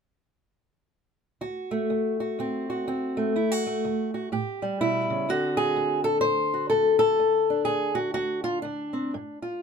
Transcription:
1.41 1.86 D2 medium
1.41 2.19 F#4 medium
1.71 3.17 A3 medium
1.90 2.35 D2 medium
2.20 2.68 F#4 medium
2.39 2.83 D2 medium
2.39 2.86 C4 medium
2.70 3.34 F#4 medium
2.87 3.32 D2 medium
2.87 3.34 C4 medium
3.17 3.66 A3 soft
3.36 3.80 D2 medium
3.36 3.52 E4 medium
3.52 4.13 F#4 soft
3.67 4.31 A3 medium
3.85 4.29 D2 medium
4.14 4.30 F#4 soft
4.32 4.77 A2 medium
4.32 4.81 G4 medium
4.62 5.29 G3 medium
4.81 5.10 B2 medium
4.81 5.29 E4 medium
5.10 5.29 C#3 medium
5.29 5.73 D2 medium
5.29 9.14 D3 soft
5.29 7.19 C4 soft
5.29 6.07 F#4 loud
5.57 6.04 G#4 medium
5.76 6.21 D2 medium
6.04 6.20 A4 loud
6.21 6.69 D2 medium
6.21 6.69 C5 loud
6.54 7.19 F#4 soft
6.70 7.17 D2 medium
6.70 6.98 A4 medium
6.99 7.64 A4 loud
7.20 7.65 D2 medium
7.50 7.95 D4 soft
7.65 8.13 D2 medium
7.65 7.96 G#4 medium
7.95 8.13 F#4 medium
8.14 8.61 D2 medium
8.14 8.43 F#4 medium
8.44 8.62 F4 medium
8.62 9.09 D2 medium
8.62 9.41 D4 medium
8.93 9.10 C4 soft
9.14 9.58 G2 medium
9.42 9.62 F4 soft

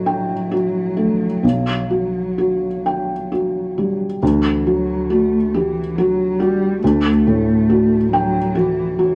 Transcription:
0.00 1.39 A1 medium
0.00 3.97 F#3 medium
0.00 0.97 A3 soft
0.00 0.33 F#4 soft
0.06 0.51 G5 soft
0.51 1.25 F#4 soft
0.97 1.43 A3 soft
1.43 4.18 B1 medium
1.90 2.66 F#3 soft
2.38 3.12 F#4 soft
2.86 3.31 G5 soft
3.32 4.05 F#4 soft
3.78 4.22 G3 soft
4.22 6.78 D2 medium
4.22 4.67 E3 medium
4.66 5.12 F#3 medium
4.66 5.36 F#3 soft
5.10 5.54 A3 medium
5.10 5.79 F#4 soft
5.53 5.98 E3 medium
5.53 5.97 G4 soft
5.96 6.40 F#3 medium
5.96 6.38 F#4 medium
6.39 6.81 G3 medium
6.39 7.08 F#4 soft
6.82 9.15 D2 medium
6.82 8.09 A3 medium
7.27 7.95 A2 medium
7.70 8.38 F#4 medium
8.11 8.57 F#3 medium
8.11 8.56 G5 soft
8.55 8.97 E3 medium
8.55 9.15 F#4 medium
8.97 9.15 E3 medium
8.97 9.15 F#3 soft

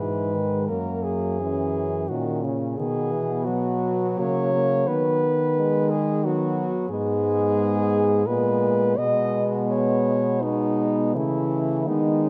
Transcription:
0.00 0.70 G#2 soft
0.00 0.36 E3 soft
0.00 0.71 G#3 soft
0.00 0.67 B4 medium
0.34 0.71 D#3 soft
0.68 2.12 F#2 soft
0.68 1.40 F#3 soft
0.68 1.41 A#3 soft
0.68 1.05 A#4 medium
1.03 2.11 G#4 medium
1.40 2.09 E3 soft
1.40 2.09 C#4 soft
2.09 2.79 A#2 soft
2.09 2.46 D#3 soft
2.09 2.77 C#4 soft
2.09 2.44 F#4 medium
2.44 2.80 C#3 soft
2.77 4.17 B2 soft
2.77 3.14 D#3 soft
2.77 4.21 B3 soft
2.77 3.46 G#4 medium
3.12 3.48 E3 soft
3.45 5.30 F#3 medium
3.45 4.21 F#4 medium
4.19 4.89 C#3 soft
4.19 4.53 A#3 medium
4.19 4.89 C#5 medium
4.54 4.89 A#3 soft
4.87 6.73 D#3 medium
4.87 5.99 B3 soft
4.87 5.92 B4 medium
5.58 6.27 G#3 medium
5.91 6.26 G#4 medium
6.24 6.91 F#3 medium
6.24 6.88 B3 medium
6.24 6.89 F#4 medium
6.90 8.28 G#2 medium
6.90 8.24 G#3 medium
6.90 8.24 B3 medium
6.90 8.28 G#4 medium
8.26 8.98 A#2 soft
8.26 8.98 G#3 medium
8.26 8.97 B3 soft
8.26 9.00 B4 medium
8.98 11.17 B2 medium
8.98 10.40 G#3 medium
8.98 10.40 B3 soft
8.98 9.45 D#5 medium
9.70 10.43 C#5 medium
10.42 11.17 G#3 medium
10.42 11.17 B3 soft
10.42 11.14 D#4 medium
11.15 11.89 C#3 medium
11.15 11.89 E3 medium
11.15 11.89 A3 soft
11.15 11.90 E4 medium
11.87 12.29 D#3 medium
11.87 12.29 G#3 medium
11.87 12.26 B3 soft
11.87 12.29 D#4 medium
12.24 12.29 C#4 soft

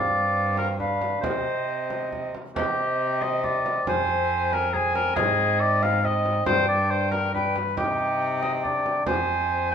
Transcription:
0.00 1.23 G2 medium
0.00 0.79 C4 medium
0.00 0.57 D5 loud
0.00 0.78 F5 medium
0.57 0.68 A#4 medium
0.57 frame drum medium
0.79 1.23 D4 medium
0.79 1.21 B4 medium
0.79 1.26 F5 medium
0.79 frame drum soft
1.01 frame drum medium
1.21 2.34 C3 medium
1.21 2.32 C4 medium
1.21 2.09 C5 medium
1.21 2.35 D#5 medium
1.21 frame drum medium
1.90 frame drum soft
2.12 frame drum soft
2.35 frame drum soft
2.56 3.83 C3 medium
2.56 3.82 C4 medium
2.56 3.24 G4 loud
2.56 3.83 D#5 medium
2.56 frame drum medium
3.22 3.43 D#5 loud
3.22 frame drum soft
3.44 3.86 D5 medium
3.44 frame drum soft
3.66 frame drum medium
3.87 5.15 F2 medium
3.87 4.72 C4 medium
3.87 4.54 C5 loud
3.87 4.71 G#5 medium
3.87 frame drum medium
4.53 4.75 A#4 loud
4.53 frame drum medium
4.72 5.16 C4 medium
4.72 4.95 G#4 medium
4.72 4.77 A#5 medium
4.72 frame drum soft
4.76 5.18 G#5 medium
4.95 5.15 A#4 loud
4.95 frame drum soft
5.16 6.44 G#2 medium
5.16 6.01 C4 medium
5.16 5.62 G#4 loud
5.16 6.03 D#5 medium
5.16 frame drum medium
5.60 5.84 D5 loud
5.83 6.06 F5 loud
5.83 frame drum medium
6.03 6.48 C4 medium
6.03 6.48 D#5 medium
6.03 6.46 D#5 loud
6.03 frame drum soft
6.26 frame drum soft
6.46 7.56 G2 medium
6.46 7.32 D4 medium
6.46 6.68 C5 loud
6.46 7.34 G5 medium
6.46 frame drum medium
6.68 6.92 D5 loud
6.91 7.11 C5 medium
7.11 7.33 A#4 loud
7.11 frame drum medium
7.33 7.55 D4 medium
7.33 7.77 B4 medium
7.33 7.56 G5 medium
7.33 frame drum soft
7.56 frame drum medium
7.77 9.04 C3 medium
7.77 8.60 D#4 medium
7.77 8.41 G4 medium
7.77 9.04 G5 medium
7.77 frame drum medium
8.42 8.52 D#5 medium
8.42 frame drum medium
8.63 9.10 D4 medium
8.63 9.06 D5 medium
8.63 frame drum soft
8.86 frame drum soft
9.06 9.75 F2 medium
9.06 9.75 C4 medium
9.06 9.71 C5 loud
9.06 9.75 G#5 medium
9.06 frame drum medium
9.71 9.75 G5 loud

